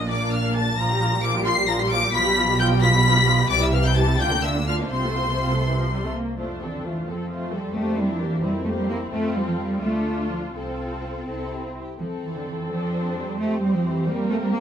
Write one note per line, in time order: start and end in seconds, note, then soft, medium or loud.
0.00 0.75 A#1 medium
0.00 0.75 A#2 medium
0.09 0.77 A#3 medium
0.09 0.77 D4 medium
0.09 0.33 D5 medium
0.09 0.32 D6 medium
0.32 0.56 F5 medium
0.32 0.55 F6 loud
0.55 0.79 A5 medium
0.55 0.78 A6 loud
0.78 2.10 A#1 medium
0.78 2.09 A#2 medium
0.78 0.89 F3 medium
0.78 0.89 F4 medium
0.78 1.24 A#5 medium
0.78 1.23 A#6 loud
0.89 1.01 G3 medium
0.89 1.01 G4 medium
1.01 1.12 F3 medium
1.01 1.13 F4 medium
1.12 1.24 G3 medium
1.12 1.24 G4 medium
1.22 1.33 F3 medium
1.22 1.34 F4 medium
1.22 1.32 D6 loud
1.22 1.45 D7 loud
1.35 1.46 G3 medium
1.35 1.46 G4 medium
1.45 1.57 F3 medium
1.45 1.57 F4 medium
1.45 1.54 C6 loud
1.45 1.67 C7 loud
1.56 1.68 G3 medium
1.56 1.68 G4 medium
1.68 1.79 F3 medium
1.68 1.79 F4 medium
1.68 1.72 A#5 medium
1.68 1.80 A#6 loud
1.79 1.91 G3 medium
1.79 1.91 G4 medium
1.79 1.91 C6 medium
1.79 1.91 C7 loud
1.89 2.03 F3 medium
1.89 2.03 F4 medium
1.89 2.13 D6 loud
1.89 2.12 D7 loud
2.02 2.14 G3 medium
2.02 2.14 G4 medium
2.13 3.50 B1 medium
2.13 3.51 B2 medium
2.13 2.25 F3 medium
2.13 2.25 F4 medium
2.13 2.60 B5 loud
2.13 2.58 B6 loud
2.25 2.37 G3 medium
2.25 2.37 G4 medium
2.37 2.48 F3 medium
2.37 2.48 F4 medium
2.50 2.60 G3 medium
2.50 2.60 G4 medium
2.59 2.71 F3 medium
2.59 2.70 F4 medium
2.59 2.82 G5 loud
2.59 2.67 G6 loud
2.71 2.82 G3 medium
2.71 2.82 G4 medium
2.82 2.94 F3 medium
2.82 2.94 F4 medium
2.82 3.49 B5 loud
2.82 3.49 B6 loud
2.94 3.05 G3 medium
2.94 3.05 G4 medium
3.05 3.15 F3 medium
3.05 3.15 F4 medium
3.16 3.28 G3 medium
3.16 3.28 G4 medium
3.27 3.39 F3 medium
3.27 3.39 F4 medium
3.39 3.51 G3 medium
3.39 3.48 G4 medium
3.50 4.19 C2 medium
3.50 4.19 C3 medium
3.50 3.61 E3 medium
3.50 3.61 G4 medium
3.50 3.62 D5 loud
3.50 3.61 D6 loud
3.60 3.73 G3 medium
3.60 3.73 E4 medium
3.60 3.74 E5 medium
3.60 3.74 E6 medium
3.72 3.84 E3 medium
3.72 3.84 G4 medium
3.72 3.86 F5 medium
3.72 3.85 F6 loud
3.84 3.96 G3 medium
3.84 3.96 E4 medium
3.84 3.97 G5 medium
3.84 3.97 G6 loud
3.95 4.07 E3 medium
3.95 4.07 G4 medium
3.95 4.19 A5 loud
3.95 4.19 A6 loud
4.07 4.19 G3 medium
4.07 4.19 E4 medium
4.19 4.92 D2 medium
4.19 4.91 D3 medium
4.19 4.30 D4 medium
4.19 4.30 F4 medium
4.19 4.43 G5 loud
4.19 4.43 G6 loud
4.31 4.43 A#3 medium
4.31 4.41 D4 medium
4.42 4.53 D4 medium
4.42 4.55 F4 medium
4.42 4.51 E5 medium
4.42 4.67 E6 loud
4.54 4.67 A#3 medium
4.54 4.66 D4 medium
4.67 4.78 D4 medium
4.67 4.78 F4 medium
4.67 4.91 F5 medium
4.67 4.75 F6 medium
4.79 4.91 A#3 medium
4.79 4.91 D4 medium
4.90 6.14 C2 medium
4.90 6.14 C3 medium
4.90 5.03 C4 medium
4.90 5.03 F4 medium
4.90 6.12 C5 medium
4.90 6.10 C6 loud
5.04 5.16 A3 medium
5.04 5.17 A4 medium
5.16 5.28 C4 medium
5.16 5.28 F4 medium
5.29 5.41 A3 soft
5.29 5.41 A4 medium
5.41 5.52 C4 soft
5.41 5.52 F4 medium
5.54 5.65 A3 soft
5.54 5.65 A4 medium
5.66 5.77 E3 medium
5.79 5.90 F3 medium
5.89 6.01 G3 medium
6.03 6.14 A3 medium
6.15 6.38 A#3 medium
6.37 6.99 F2 soft
6.37 6.59 F3 medium
6.37 6.60 A3 soft
6.37 7.03 D4 soft
6.37 6.60 F4 soft
6.37 6.59 C5 soft
6.60 6.72 E3 soft
6.60 6.84 C4 soft
6.60 6.84 A4 soft
6.73 6.84 D3 soft
6.83 7.06 E3 medium
6.83 7.08 A3 soft
6.83 7.07 F4 soft
6.83 7.07 C5 soft
7.07 7.68 F2 soft
7.07 7.52 F3 medium
7.07 7.30 C4 soft
7.07 7.76 C4 soft
7.07 7.30 A4 soft
7.30 7.52 A3 soft
7.30 7.52 F4 soft
7.30 7.51 C5 soft
7.53 7.76 G3 medium
7.53 7.76 C4 soft
7.53 7.76 A4 soft
7.76 8.36 F2 medium
7.76 7.98 A3 medium
7.76 7.97 A#3 soft
7.76 8.44 D4 medium
7.76 7.97 G4 soft
7.76 7.97 C5 soft
7.98 8.10 G3 medium
7.98 8.21 C4 soft
7.98 8.21 E4 soft
7.98 8.22 A#4 soft
8.10 8.21 F3 medium
8.20 8.43 E3 medium
8.20 8.43 A#3 soft
8.20 8.43 G4 soft
8.20 8.44 C5 soft
8.43 9.04 F2 medium
8.43 8.51 G3 medium
8.43 8.66 C4 soft
8.43 9.79 C4 medium
8.43 8.66 E4 medium
8.43 8.67 A#4 medium
8.66 8.70 A3 medium
8.66 8.88 A#3 soft
8.66 8.88 G4 medium
8.66 8.88 C5 soft
8.79 8.89 G3 medium
8.89 8.97 A#3 medium
8.89 9.11 C4 soft
8.89 9.12 E4 soft
8.89 9.12 A#4 soft
9.12 9.78 F2 medium
9.12 9.35 A3 medium
9.12 9.78 C4 medium
9.12 9.77 F4 medium
9.12 9.77 A4 medium
9.35 9.47 G3 medium
9.47 9.52 F3 medium
9.59 9.81 G3 medium
9.80 10.55 D2 soft
9.80 10.30 A3 medium
9.80 10.55 D4 soft
9.80 10.54 F4 medium
9.80 10.54 F4 soft
9.80 10.54 A4 soft
10.31 10.39 F3 medium
10.55 11.26 C2 soft
10.55 11.74 C4 medium
10.55 11.27 C4 soft
10.55 11.26 F4 soft
10.55 11.62 A4 soft
10.55 11.27 A4 soft
11.28 11.78 C2 soft
11.28 11.78 C4 soft
11.28 11.78 E4 soft
11.28 11.51 A4 medium
11.53 11.65 G4 soft
11.66 11.70 F4 soft
11.78 12.00 G4 soft
11.99 14.60 F2 soft
11.99 12.07 F3 medium
11.99 14.03 C4 soft
11.99 12.66 C4 soft
11.99 13.35 A4 soft
11.99 12.66 A4 soft
12.23 12.34 E3 medium
12.35 12.46 D3 soft
12.46 12.69 E3 medium
12.70 13.15 F3 medium
12.70 13.39 D4 soft
12.70 13.38 C5 soft
13.16 13.39 G3 medium
13.39 13.61 A3 medium
13.39 14.60 C4 medium
13.39 14.06 G4 soft
13.39 14.06 C5 medium
13.62 13.73 G3 medium
13.74 13.85 F3 medium
13.84 14.07 E3 medium
14.07 14.30 G3 medium
14.07 14.60 A#3 medium
14.07 14.60 G4 medium
14.07 14.60 A#4 medium
14.30 14.35 A3 medium
14.42 14.53 G3 medium
14.52 14.60 A#3 medium